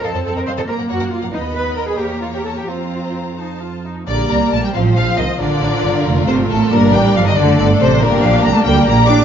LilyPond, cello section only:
\new Staff \with { instrumentName = "Cello section" } { \time 6/8 \key f \phrygian \tempo 4. = 92 a'8 a'16 bes'16 c''16 a'16 bes'8 ges'8 f'8 | dis'8 b'8 bes'16 aes'16 g'8 f'16 g'16 a'16 g'16 | f'4. r4. | \key bes \major d8 bes8 a16 g16 f8 f8 ees8 |
d2 c8 a,8 | bes,8 g8 f16 ees16 d8 d8 c8 | bes,8 f8 bes16 a16 g8 bes8 d'8 | }